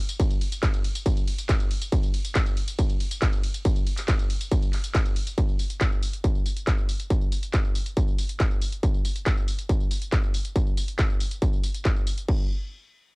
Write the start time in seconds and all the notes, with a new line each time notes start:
0.09 closed hi-hat, ride, tambourine
0.20 kick, closed hi-hat, ride, tambourine
0.31 ride, tambourine
0.41 open hi-hat, ride
0.52 closed hi-hat, ride, tambourine
0.63 kick, clap, closed hi-hat, ride, tambourine
0.74 ride, tambourine
0.85 open hi-hat, ride
0.95 closed hi-hat, ride, tambourine
1.06 kick, closed hi-hat, ride, tambourine
1.17 ride, tambourine
1.28 open hi-hat, ride
1.39 closed hi-hat, ride, tambourine
1.49 kick, clap, closed hi-hat, ride, tambourine
1.60 ride, tambourine
1.71 open hi-hat, ride
1.82 closed hi-hat, ride, tambourine
1.92 kick, closed hi-hat, ride, tambourine
2.03 ride, tambourine
2.14 open hi-hat, ride
2.25 closed hi-hat, ride, tambourine
2.35 kick, clap, closed hi-hat, ride, tambourine
2.46 ride, tambourine
2.57 open hi-hat, ride
2.68 closed hi-hat, ride, tambourine
2.79 kick, closed hi-hat, ride, tambourine
2.90 ride, tambourine
3.00 open hi-hat, ride
3.11 closed hi-hat, ride, tambourine
3.22 kick, clap, closed hi-hat, ride, tambourine
3.33 ride, tambourine
3.43 open hi-hat, ride
3.54 closed hi-hat, ride, tambourine
3.65 kick, closed hi-hat, ride, tambourine
3.76 ride, tambourine
3.87 open hi-hat, ride
3.98 clap, closed hi-hat, ride, tambourine
4.08 kick, clap, closed hi-hat, ride, tambourine
4.19 ride, tambourine
4.30 open hi-hat, ride
4.41 closed hi-hat, ride, tambourine
4.51 kick, closed hi-hat, ride, tambourine
4.62 ride, tambourine
4.73 clap, open hi-hat, ride
4.84 closed hi-hat, ride, tambourine
4.95 kick, clap, closed hi-hat, ride, tambourine
5.05 ride, tambourine
5.16 open hi-hat, ride
5.27 closed hi-hat, ride, tambourine
5.38 kick, closed hi-hat, tambourine
5.49 tambourine
5.59 open hi-hat, tambourine
5.70 closed hi-hat, tambourine
5.81 kick, clap, closed hi-hat, tambourine
5.92 tambourine
6.03 open hi-hat, tambourine
6.13 closed hi-hat, tambourine
6.24 kick, closed hi-hat, tambourine
6.35 tambourine
6.46 open hi-hat, tambourine
6.57 closed hi-hat, tambourine
6.67 kick, clap, closed hi-hat, tambourine
6.78 tambourine
6.89 open hi-hat, tambourine
7.00 closed hi-hat, tambourine
7.10 kick, closed hi-hat, tambourine
7.21 tambourine
7.32 open hi-hat, tambourine
7.43 closed hi-hat, tambourine
7.53 kick, clap, closed hi-hat, tambourine
7.64 tambourine
7.75 open hi-hat, tambourine
7.86 closed hi-hat, tambourine
7.97 kick, closed hi-hat, tambourine
8.08 tambourine
8.18 open hi-hat, tambourine
8.29 closed hi-hat, tambourine
8.40 kick, clap, closed hi-hat, tambourine
8.51 tambourine
8.61 open hi-hat, tambourine
8.72 closed hi-hat, tambourine
8.83 kick, closed hi-hat, tambourine
8.94 tambourine
9.05 open hi-hat, tambourine
9.16 closed hi-hat, tambourine
9.26 kick, clap, closed hi-hat, tambourine
9.37 tambourine
9.48 open hi-hat, tambourine
9.59 closed hi-hat, tambourine
9.69 kick, closed hi-hat, tambourine
9.80 tambourine
9.91 open hi-hat, tambourine
10.02 closed hi-hat, tambourine
10.13 kick, clap, closed hi-hat, tambourine
10.23 tambourine
10.34 open hi-hat, tambourine
10.45 closed hi-hat, tambourine
10.56 kick, closed hi-hat, tambourine
10.67 tambourine
10.77 open hi-hat, tambourine
10.88 closed hi-hat, tambourine
10.99 kick, clap, closed hi-hat, tambourine
11.10 tambourine
11.20 open hi-hat, tambourine
11.31 closed hi-hat, tambourine
11.42 kick, closed hi-hat, tambourine
11.53 tambourine
11.64 open hi-hat, tambourine
11.74 closed hi-hat, tambourine
11.85 kick, clap, closed hi-hat, tambourine
11.96 tambourine
12.07 open hi-hat, tambourine
12.18 closed hi-hat, tambourine
12.28 kick, crash